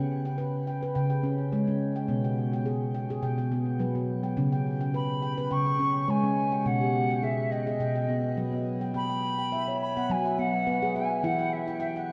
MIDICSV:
0, 0, Header, 1, 3, 480
1, 0, Start_track
1, 0, Tempo, 571429
1, 1754, Time_signature, 4, 2, 24, 8
1, 10182, End_track
2, 0, Start_track
2, 0, Title_t, "Flute"
2, 0, Program_c, 0, 73
2, 4160, Note_on_c, 0, 83, 87
2, 4636, Note_on_c, 0, 85, 93
2, 4649, Note_off_c, 0, 83, 0
2, 5123, Note_on_c, 0, 80, 79
2, 5135, Note_off_c, 0, 85, 0
2, 5597, Note_on_c, 0, 78, 85
2, 5610, Note_off_c, 0, 80, 0
2, 6073, Note_on_c, 0, 76, 77
2, 6085, Note_off_c, 0, 78, 0
2, 6306, Note_on_c, 0, 75, 65
2, 6319, Note_off_c, 0, 76, 0
2, 7272, Note_off_c, 0, 75, 0
2, 7528, Note_on_c, 0, 83, 106
2, 8209, Note_off_c, 0, 83, 0
2, 8247, Note_on_c, 0, 83, 85
2, 8493, Note_on_c, 0, 80, 85
2, 8506, Note_off_c, 0, 83, 0
2, 8724, Note_on_c, 0, 78, 88
2, 8736, Note_off_c, 0, 80, 0
2, 9196, Note_on_c, 0, 80, 84
2, 9208, Note_off_c, 0, 78, 0
2, 9440, Note_on_c, 0, 78, 86
2, 9453, Note_off_c, 0, 80, 0
2, 9681, Note_on_c, 0, 76, 75
2, 9694, Note_off_c, 0, 78, 0
2, 9910, Note_off_c, 0, 76, 0
2, 9916, Note_on_c, 0, 76, 77
2, 9969, Note_off_c, 0, 76, 0
2, 10182, End_track
3, 0, Start_track
3, 0, Title_t, "Handpan"
3, 0, Program_c, 1, 114
3, 0, Note_on_c, 1, 49, 76
3, 0, Note_on_c, 1, 79, 51
3, 203, Note_off_c, 1, 79, 0
3, 213, Note_on_c, 1, 79, 54
3, 319, Note_on_c, 1, 71, 69
3, 554, Note_off_c, 1, 79, 0
3, 557, Note_off_c, 1, 71, 0
3, 564, Note_on_c, 1, 79, 55
3, 644, Note_off_c, 1, 49, 0
3, 694, Note_on_c, 1, 71, 66
3, 789, Note_off_c, 1, 79, 0
3, 799, Note_on_c, 1, 79, 58
3, 802, Note_on_c, 1, 49, 81
3, 912, Note_off_c, 1, 79, 0
3, 922, Note_on_c, 1, 79, 51
3, 929, Note_off_c, 1, 71, 0
3, 1036, Note_on_c, 1, 61, 72
3, 1202, Note_off_c, 1, 49, 0
3, 1273, Note_off_c, 1, 79, 0
3, 1275, Note_off_c, 1, 61, 0
3, 1280, Note_on_c, 1, 73, 53
3, 1281, Note_on_c, 1, 56, 76
3, 1407, Note_on_c, 1, 61, 63
3, 1480, Note_off_c, 1, 56, 0
3, 1645, Note_off_c, 1, 61, 0
3, 1645, Note_on_c, 1, 79, 52
3, 1646, Note_off_c, 1, 73, 0
3, 1750, Note_on_c, 1, 47, 83
3, 1755, Note_on_c, 1, 59, 69
3, 1874, Note_off_c, 1, 79, 0
3, 1884, Note_on_c, 1, 79, 52
3, 1994, Note_off_c, 1, 59, 0
3, 2118, Note_off_c, 1, 79, 0
3, 2128, Note_on_c, 1, 79, 58
3, 2231, Note_on_c, 1, 68, 66
3, 2464, Note_off_c, 1, 79, 0
3, 2472, Note_off_c, 1, 68, 0
3, 2474, Note_on_c, 1, 79, 55
3, 2557, Note_off_c, 1, 47, 0
3, 2606, Note_on_c, 1, 68, 68
3, 2700, Note_off_c, 1, 79, 0
3, 2708, Note_on_c, 1, 47, 78
3, 2710, Note_on_c, 1, 79, 63
3, 2829, Note_off_c, 1, 79, 0
3, 2839, Note_on_c, 1, 79, 55
3, 2844, Note_off_c, 1, 68, 0
3, 2955, Note_on_c, 1, 59, 72
3, 3113, Note_off_c, 1, 47, 0
3, 3188, Note_on_c, 1, 54, 81
3, 3191, Note_off_c, 1, 79, 0
3, 3193, Note_on_c, 1, 71, 57
3, 3194, Note_off_c, 1, 59, 0
3, 3320, Note_on_c, 1, 59, 66
3, 3391, Note_off_c, 1, 54, 0
3, 3557, Note_on_c, 1, 79, 52
3, 3561, Note_off_c, 1, 59, 0
3, 3563, Note_off_c, 1, 71, 0
3, 3670, Note_on_c, 1, 49, 89
3, 3672, Note_on_c, 1, 61, 75
3, 3790, Note_off_c, 1, 79, 0
3, 3800, Note_on_c, 1, 79, 54
3, 3913, Note_off_c, 1, 61, 0
3, 4028, Note_off_c, 1, 79, 0
3, 4038, Note_on_c, 1, 79, 57
3, 4152, Note_on_c, 1, 71, 68
3, 4376, Note_off_c, 1, 79, 0
3, 4386, Note_on_c, 1, 79, 55
3, 4393, Note_off_c, 1, 71, 0
3, 4478, Note_off_c, 1, 49, 0
3, 4515, Note_on_c, 1, 71, 68
3, 4615, Note_off_c, 1, 79, 0
3, 4625, Note_on_c, 1, 79, 60
3, 4630, Note_on_c, 1, 49, 76
3, 4748, Note_off_c, 1, 79, 0
3, 4758, Note_on_c, 1, 79, 52
3, 4759, Note_off_c, 1, 71, 0
3, 4866, Note_on_c, 1, 61, 69
3, 5035, Note_off_c, 1, 49, 0
3, 5107, Note_on_c, 1, 56, 78
3, 5110, Note_off_c, 1, 61, 0
3, 5110, Note_on_c, 1, 73, 51
3, 5112, Note_off_c, 1, 79, 0
3, 5237, Note_on_c, 1, 61, 69
3, 5312, Note_off_c, 1, 56, 0
3, 5476, Note_on_c, 1, 79, 55
3, 5481, Note_off_c, 1, 61, 0
3, 5482, Note_off_c, 1, 73, 0
3, 5590, Note_on_c, 1, 59, 68
3, 5591, Note_on_c, 1, 47, 81
3, 5721, Note_off_c, 1, 79, 0
3, 5721, Note_on_c, 1, 67, 52
3, 5833, Note_off_c, 1, 59, 0
3, 5967, Note_on_c, 1, 79, 53
3, 6072, Note_on_c, 1, 68, 68
3, 6074, Note_off_c, 1, 67, 0
3, 6308, Note_off_c, 1, 79, 0
3, 6314, Note_off_c, 1, 68, 0
3, 6318, Note_on_c, 1, 79, 57
3, 6401, Note_off_c, 1, 47, 0
3, 6442, Note_on_c, 1, 68, 67
3, 6544, Note_off_c, 1, 79, 0
3, 6550, Note_on_c, 1, 47, 75
3, 6554, Note_on_c, 1, 79, 59
3, 6672, Note_off_c, 1, 79, 0
3, 6682, Note_on_c, 1, 79, 52
3, 6684, Note_off_c, 1, 68, 0
3, 6793, Note_on_c, 1, 59, 66
3, 6956, Note_off_c, 1, 47, 0
3, 7031, Note_on_c, 1, 54, 73
3, 7035, Note_off_c, 1, 59, 0
3, 7035, Note_off_c, 1, 79, 0
3, 7035, Note_on_c, 1, 71, 49
3, 7159, Note_on_c, 1, 59, 63
3, 7235, Note_off_c, 1, 54, 0
3, 7401, Note_on_c, 1, 79, 51
3, 7403, Note_off_c, 1, 59, 0
3, 7406, Note_off_c, 1, 71, 0
3, 7502, Note_off_c, 1, 79, 0
3, 7512, Note_on_c, 1, 59, 69
3, 7512, Note_on_c, 1, 79, 58
3, 7630, Note_off_c, 1, 79, 0
3, 7640, Note_on_c, 1, 79, 56
3, 7755, Note_off_c, 1, 59, 0
3, 7875, Note_off_c, 1, 79, 0
3, 7885, Note_on_c, 1, 79, 58
3, 7999, Note_on_c, 1, 76, 72
3, 8129, Note_on_c, 1, 73, 59
3, 8236, Note_off_c, 1, 79, 0
3, 8238, Note_off_c, 1, 76, 0
3, 8370, Note_on_c, 1, 59, 72
3, 8374, Note_on_c, 1, 78, 62
3, 8479, Note_off_c, 1, 73, 0
3, 8480, Note_on_c, 1, 54, 95
3, 8609, Note_off_c, 1, 59, 0
3, 8610, Note_on_c, 1, 76, 60
3, 8721, Note_off_c, 1, 78, 0
3, 8724, Note_on_c, 1, 59, 73
3, 8952, Note_off_c, 1, 59, 0
3, 8958, Note_off_c, 1, 54, 0
3, 8959, Note_off_c, 1, 76, 0
3, 8962, Note_on_c, 1, 59, 84
3, 8962, Note_on_c, 1, 71, 60
3, 9093, Note_on_c, 1, 68, 75
3, 9202, Note_on_c, 1, 76, 61
3, 9329, Note_off_c, 1, 68, 0
3, 9329, Note_off_c, 1, 71, 0
3, 9363, Note_off_c, 1, 59, 0
3, 9436, Note_on_c, 1, 52, 82
3, 9442, Note_on_c, 1, 64, 77
3, 9442, Note_on_c, 1, 79, 63
3, 9557, Note_off_c, 1, 79, 0
3, 9567, Note_on_c, 1, 79, 61
3, 9569, Note_off_c, 1, 76, 0
3, 9679, Note_off_c, 1, 64, 0
3, 9799, Note_off_c, 1, 79, 0
3, 9809, Note_on_c, 1, 79, 58
3, 9901, Note_off_c, 1, 79, 0
3, 9911, Note_on_c, 1, 79, 71
3, 10048, Note_on_c, 1, 78, 58
3, 10153, Note_off_c, 1, 79, 0
3, 10182, Note_off_c, 1, 52, 0
3, 10182, Note_off_c, 1, 78, 0
3, 10182, End_track
0, 0, End_of_file